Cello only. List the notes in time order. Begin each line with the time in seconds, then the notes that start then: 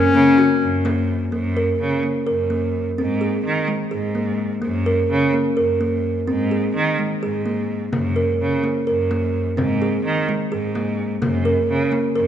Already playing: F#2
0.15 C#3
0.62 F#2
1.32 F#2
1.80 C#3
2.27 F#2
2.98 G#2
3.45 D#3
3.92 G#2
4.63 F#2
5.10 C#3
5.57 F#2
6.28 G#2
6.75 D#3
7.22 G#2
7.93 F#2
8.41 C#3
8.88 F#2
9.58 G#2
10.04 D#3
10.52 G#2
11.22 F#2
11.70 C#3
12.16 F#2